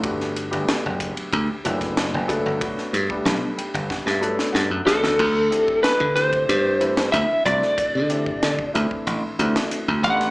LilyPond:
<<
  \new Staff \with { instrumentName = "Lead electric guitar" } { \time 4/4 \key g \lydian \tempo 4 = 93 r1 | r2. r8 a'8~ | \key d \mixolydian a'4 b'8 c''4. e''8 d''8~ | d''4. r2 fis''8 | }
  \new Staff \with { instrumentName = "Grand piano" } { \time 4/4 \key g \lydian << { r1 | r4. g''8 \tuplet 3/2 { fis''8 e''8 d''8 } fis''8 e''8 | \key d \mixolydian r1 | r1 | } \\ { <a b d' fis' g'>8. <a b d' fis' g'>4. r16 <fis a b d' e'>4 <fis a b d' a'>8 | <fis a b d' fis'>8. <g a b d' g'>4. r16 <fis a b d' a'>4 <fis a b d' fis'>8 | r8 <e a c' d' g'>4 <e a c' d' g'>4 <e a c' d' e'>4 <e a c' d' fis'>8~ | <e a c' d' fis'>8 <e a c' d' g'>4 <e a c' d' e'>4 <e a c' d' fis'>4 <e a b d' g'>8 | } >> }
  \new Staff \with { instrumentName = "Slap bass" } { \clef bass \time 4/4 \key g \lydian g,,8. g,,16 r16 fis,,8 r16 d,16 r16 fis,,8. fis,,8 g,,16 | r8 g,16 r16 b,,16 r8 g,,16 r16 g,8 r16 g,16 fis,16 e,16 d,16 | \key d \mixolydian d,8 r8. d8. g,4 d,16 r16 c,16 r16 | r16 d8 a,,16 d16 r16 d,16 r16 a,,16 r16 d,16 r8 d,16 a,,8 | }
  \new DrumStaff \with { instrumentName = "Drums" } \drummode { \time 4/4 <bd cymr>16 sn16 <hhp cymr>16 cymr16 <cymr sn>8 <hhp bd cymr>16 cymr16 <bd cymr>8 <hhp cymr>16 <bd cymr sn>16 <cymr sn>8 <hhp bd cymr>8 | <bd cymr>16 sn16 <hhp cymr>16 bd16 <cymr sn>8 <hhp cymr>16 cymr16 <bd sn>16 sn16 hhp16 sn16 sn8 <hhp sn>16 sn16 | <cymc bd>8 <hhp cymr>16 bd16 <hhp cymr sn>16 bd16 <hhp cymr sn>16 <bd cymr>16 <hhp cymr>8 <hhp cymr>16 <cymr sn>16 <hhp cymr>8 <hhp bd cymr>16 sn16 | <hhp bd cymr>8 <hhp cymr>16 bd16 <hhp cymr sn>16 bd16 <hhp cymr>16 bd16 <hhp cymr>8 <hhp cymr>16 <cymr sn>16 <hhp cymr>8 <hhp bd cymr>16 <cymr sn>16 | }
>>